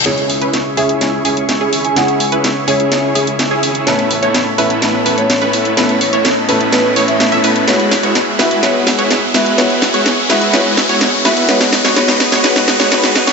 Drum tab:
HH |xxoxx-oxx-oxx-ox|xxoxx-oxx-oxx-ox|xxoxx-oxx-oxx-ox|xxoxx-oxx-oxxxox|
SD |o---o---o---o---|o---o---o---o---|o---o---o---o---|o---o---o---o---|

HH |xxoxx-oxx-oxx-ox|xxoxx-oxx-oxx-ox|xxoxx-oxx-oxx-ox|
SD |o-o-o-o-o-o-o-o-|o-o-o-o-o-o-o-o-|oooooooooooooooo|